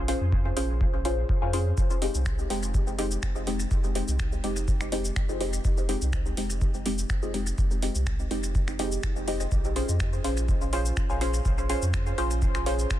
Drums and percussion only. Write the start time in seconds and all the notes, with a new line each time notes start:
0.08 open hi-hat
0.32 kick
0.57 open hi-hat
0.81 kick
1.05 open hi-hat
1.29 kick
1.53 open hi-hat
1.78 kick, shaker
1.90 shaker
2.02 open hi-hat
2.15 shaker
2.26 finger snap, kick, shaker
2.39 shaker
2.50 open hi-hat
2.63 shaker
2.74 kick, shaker
2.87 shaker
2.99 open hi-hat
3.11 shaker
3.23 finger snap, kick, shaker
3.36 shaker
3.47 open hi-hat
3.60 shaker
3.71 kick, shaker
3.84 shaker
3.95 open hi-hat
4.08 shaker
4.20 finger snap, kick, shaker
4.32 shaker
4.44 open hi-hat
4.57 shaker
4.68 kick, shaker
4.81 finger snap, shaker
4.92 open hi-hat
5.05 shaker
5.16 finger snap, kick, shaker
5.29 shaker
5.41 open hi-hat
5.53 shaker
5.65 kick, shaker
5.77 shaker
5.89 open hi-hat
6.02 shaker
6.13 finger snap, kick, shaker
6.26 shaker
6.37 open hi-hat
6.50 shaker
6.61 kick, shaker
6.74 shaker
6.86 open hi-hat
6.98 shaker
7.10 finger snap, kick, shaker
7.23 shaker
7.34 open hi-hat
7.47 shaker
7.58 kick, shaker
7.71 shaker
7.82 open hi-hat
7.95 shaker
8.07 finger snap, kick, shaker
8.19 shaker
8.31 open hi-hat
8.44 shaker
8.55 kick, shaker
8.68 finger snap, shaker
8.79 open hi-hat
8.92 shaker
9.03 finger snap, kick, shaker
9.16 shaker
9.28 open hi-hat
9.40 shaker
9.52 kick, shaker
9.65 shaker
9.76 open hi-hat
9.89 shaker
10.00 finger snap, kick, shaker
10.13 shaker
10.24 open hi-hat
10.37 shaker
10.49 kick, shaker
10.61 shaker
10.73 open hi-hat
10.86 shaker
10.97 finger snap, kick, shaker
11.10 shaker
11.21 open hi-hat
11.34 shaker
11.45 kick, shaker
11.58 shaker
11.70 open hi-hat
11.82 shaker
11.94 finger snap, kick, shaker
12.06 shaker
12.18 open hi-hat
12.31 shaker
12.42 kick, shaker
12.55 finger snap, shaker
12.66 open hi-hat
12.79 shaker
12.91 finger snap, kick, shaker